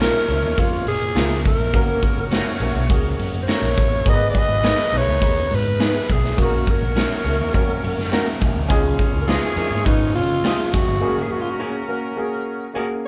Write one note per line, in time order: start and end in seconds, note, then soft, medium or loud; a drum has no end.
0.00 0.22 A#3 medium
0.00 0.11 C#4 medium
0.00 0.23 C#4 medium
0.00 1.42 F4 medium
0.00 0.11 F4 medium
0.00 0.23 F4 medium
0.00 1.42 A#4 medium
0.00 0.23 A#4 medium
0.00 0.61 A#4 loud
0.00 0.12 A#4 medium
0.00 1.42 C#5 medium
0.00 snare loud
0.00 closed hi-hat medium
0.28 0.40 C#2 medium
0.28 0.52 A#3 medium
0.28 0.52 C#4 medium
0.28 0.52 F4 medium
0.28 0.53 C#5 medium
0.28 closed hi-hat medium
0.43 0.55 D#2 medium
0.57 0.81 F2 medium
0.57 1.03 A#3 medium
0.57 1.04 C#4 medium
0.57 1.04 F4 medium
0.57 0.87 F4 medium
0.57 1.04 A#4 medium
0.57 kick medium
0.57 closed hi-hat medium
0.86 1.09 A#2 medium
0.86 1.42 G#4 loud
0.86 closed hi-hat medium
1.15 1.50 C#2 medium
1.15 1.61 A#3 medium
1.15 1.26 C#4 medium
1.15 1.61 C#4 medium
1.15 1.27 F4 medium
1.15 1.62 F4 medium
1.15 1.28 A#4 medium
1.15 1.62 A#4 medium
1.15 snare loud
1.15 closed hi-hat medium
1.45 2.29 A#4 medium
1.45 kick medium
1.45 closed hi-hat medium
1.59 1.71 A#1 medium
1.59 closed hi-hat soft
1.73 1.97 F#1 medium
1.73 2.19 A#3 loud
1.73 2.19 C#4 medium
1.73 2.20 F#4 medium
1.73 3.74 F#4 medium
1.73 3.74 A#4 medium
1.73 2.20 A#4 loud
1.73 3.73 C#5 medium
1.73 kick loud
1.73 closed hi-hat medium
2.02 kick medium
2.02 closed hi-hat medium
2.16 2.40 F#1 medium
2.31 2.55 A#3 medium
2.31 2.43 C#4 medium
2.31 2.55 C#4 medium
2.31 2.43 F#4 medium
2.31 2.55 F#4 medium
2.31 2.43 A#4 medium
2.31 2.55 C#5 medium
2.31 snare loud
2.31 closed hi-hat medium
2.60 2.72 A#1 medium
2.60 2.83 A#3 medium
2.60 2.84 C#4 medium
2.60 2.84 F#4 medium
2.60 2.84 A#4 medium
2.60 closed hi-hat medium
2.74 2.90 B1 medium
2.89 3.13 C#2 medium
2.89 3.35 A#3 medium
2.89 3.35 C#4 medium
2.89 3.36 F#4 medium
2.89 3.36 G#4 medium
2.89 kick medium
2.89 closed hi-hat medium
3.19 3.53 F#2 medium
3.19 closed hi-hat medium
3.42 3.51 C5 medium
3.46 3.93 A#3 medium
3.46 3.59 C#4 medium
3.46 3.93 C#4 medium
3.46 3.93 F#4 medium
3.46 3.59 F#4 medium
3.46 3.55 A4 medium
3.46 3.60 A#4 medium
3.46 4.11 C#5 medium
3.46 snare loud
3.46 closed hi-hat medium
3.55 3.97 A#4 medium
3.62 3.74 A#1 medium
3.77 4.01 A1 medium
3.77 kick medium
3.77 closed hi-hat medium
4.05 4.29 G#1 loud
4.05 4.51 B3 medium
4.05 4.51 D#4 medium
4.05 6.06 D#4 medium
4.05 4.52 G#4 medium
4.05 6.06 G#4 medium
4.05 4.13 A#4 medium
4.05 6.06 B4 medium
4.05 4.29 D#5 loud
4.05 kick loud
4.05 closed hi-hat medium
4.05 muted conga soft
4.13 4.55 B4 loud
4.30 4.40 D5 medium
4.35 4.99 D#5 loud
4.35 kick medium
4.35 closed hi-hat medium
4.35 muted conga medium
4.49 4.72 G#1 medium
4.63 4.86 B3 medium
4.63 4.87 D#4 medium
4.63 4.75 D#4 medium
4.63 4.87 G#4 medium
4.63 4.75 G#4 medium
4.63 4.87 A#4 medium
4.63 4.75 B4 medium
4.63 snare loud
4.63 closed hi-hat medium
4.63 high conga medium
4.92 5.04 B1 medium
4.92 5.15 B3 medium
4.92 5.15 D#4 medium
4.92 5.16 G#4 medium
4.92 5.16 B4 medium
4.92 closed hi-hat medium
4.97 5.56 C#5 loud
5.07 5.19 C#2 medium
5.21 5.45 D#2 medium
5.21 5.28 A#3 medium
5.21 5.67 D#4 medium
5.21 5.68 G#4 medium
5.21 5.68 A#5 medium
5.21 kick medium
5.21 closed hi-hat medium
5.21 muted conga soft
5.28 5.70 B3 medium
5.51 5.97 G#2 medium
5.51 closed hi-hat medium
5.51 low conga medium
5.55 6.13 B4 medium
5.79 6.25 B3 medium
5.79 6.25 D#4 medium
5.79 5.91 D#4 medium
5.79 6.25 G#4 medium
5.79 5.91 G#4 medium
5.79 6.26 B4 medium
5.79 5.92 B4 medium
5.79 snare loud
5.79 closed hi-hat medium
5.79 high conga soft
6.08 6.32 B1 medium
6.08 6.39 G#4 medium
6.08 kick medium
6.08 closed hi-hat medium
6.08 high conga medium
6.25 snare soft
6.37 6.61 A#1 loud
6.37 6.83 A#3 medium
6.37 6.83 C#4 medium
6.37 6.83 F#4 medium
6.37 8.37 F#4 medium
6.37 6.45 G#4 medium
6.37 8.38 A#4 medium
6.37 8.37 C#5 medium
6.37 kick medium
6.37 closed hi-hat medium
6.37 muted conga soft
6.42 6.72 F#4 medium
6.42 6.87 A#4 loud
6.67 8.43 A#4 medium
6.67 kick medium
6.67 closed hi-hat medium
6.67 muted conga soft
6.81 7.04 A#1 medium
6.96 7.19 A#3 medium
6.96 7.07 C#4 medium
6.96 7.19 C#4 medium
6.96 7.19 F#4 medium
6.96 7.07 F#4 medium
6.96 7.19 A#4 medium
6.96 7.08 A#4 medium
6.96 snare loud
6.96 closed hi-hat medium
6.96 high conga medium
7.24 7.36 C#2 medium
7.24 7.47 A#3 medium
7.24 7.48 C#4 medium
7.24 7.48 F#4 medium
7.24 7.48 A#4 medium
7.24 closed hi-hat medium
7.39 7.51 D#2 medium
7.52 7.77 F2 medium
7.52 7.99 A#3 medium
7.52 7.99 C#4 medium
7.52 7.99 F#4 medium
7.52 7.99 C#5 loud
7.52 kick medium
7.52 closed hi-hat medium
7.52 muted conga soft
7.83 8.18 F#2 medium
7.83 closed hi-hat medium
7.83 low conga medium
7.99 snare soft
8.11 8.57 A#3 medium
8.11 8.57 C#4 medium
8.11 8.23 C#4 medium
8.11 8.57 F#4 medium
8.11 8.23 F#4 medium
8.11 8.58 A#4 loud
8.11 8.24 A#4 medium
8.11 snare loud
8.11 closed hi-hat medium
8.11 high conga medium
8.40 8.53 A#1 medium
8.40 kick medium
8.40 closed hi-hat medium
8.40 high conga medium
8.55 8.67 D2 medium
8.55 closed hi-hat soft
8.68 8.93 C#2 loud
8.68 9.15 C#4 loud
8.68 9.15 D#4 loud
8.68 9.15 F4 medium
8.68 10.69 F4 medium
8.68 9.16 G#4 loud
8.68 10.70 G#4 medium
8.68 10.70 C#5 medium
8.68 kick loud
8.68 closed hi-hat medium
8.68 muted conga soft
8.99 kick medium
8.99 closed hi-hat medium
8.99 muted conga medium
9.13 9.36 C#2 medium
9.21 9.29 A#4 medium
9.27 9.50 C#4 medium
9.27 9.50 D#4 medium
9.27 9.39 F4 medium
9.27 9.51 F4 medium
9.27 9.87 G#4 loud
9.27 9.39 G#4 medium
9.27 9.51 B4 medium
9.27 9.40 D#5 medium
9.27 snare loud
9.27 closed hi-hat medium
9.27 high conga medium
9.56 9.68 F2 medium
9.56 9.79 C#4 medium
9.56 9.79 D#4 medium
9.56 9.80 F4 medium
9.56 9.80 A#4 medium
9.56 closed hi-hat medium
9.70 9.82 G#2 medium
9.85 10.16 G#1 medium
9.85 10.31 C#4 medium
9.85 10.31 D#4 medium
9.85 10.14 D#4 medium
9.85 10.31 F4 medium
9.85 10.32 B4 medium
9.85 kick medium
9.85 closed hi-hat medium
9.85 muted conga soft
10.14 10.49 C#3 loud
10.14 10.74 F4 loud
10.14 closed hi-hat medium
10.14 low conga medium
10.43 10.89 C#4 medium
10.43 10.89 D#4 medium
10.43 10.55 F4 medium
10.43 10.89 F4 medium
10.43 10.51 G4 medium
10.43 10.55 G#4 medium
10.43 10.56 D#5 loud
10.43 snare loud
10.43 closed hi-hat medium
10.43 high conga medium
10.51 10.93 G#4 medium
10.73 10.85 F2 medium
10.73 11.24 F#4 medium
10.73 kick medium
10.73 closed hi-hat medium
10.73 high conga medium
10.87 10.99 G1 medium
11.00 11.47 A#3 medium
11.00 11.47 C#4 medium
11.00 13.00 C#4 medium
11.00 11.47 F#4 medium
11.00 13.01 F#4 medium
11.00 11.47 G#4 loud
11.00 13.01 A#4 medium
11.22 11.33 G#4 medium
11.31 11.42 F#4 medium
11.41 11.52 F4 medium
11.50 11.60 F#4 medium
11.59 11.82 A#3 medium
11.59 11.82 C#4 medium
11.59 11.71 C#4 medium
11.59 11.82 F#4 medium
11.59 11.82 G#4 medium
11.59 11.71 G#4 medium
11.59 11.72 A#4 medium
11.88 12.11 A#3 medium
11.88 12.11 C#4 medium
11.88 12.12 F#4 medium
11.88 12.12 A#4 medium
12.16 12.62 A#3 medium
12.16 12.63 C#4 medium
12.16 12.63 F#4 medium
12.16 12.63 G#4 medium
12.74 13.08 A#3 medium
12.74 13.08 C#4 medium
12.74 12.86 C#4 medium
12.74 13.08 F#4 medium
12.74 13.08 G#4 medium
12.74 12.87 G#4 medium
12.74 12.87 A#4 medium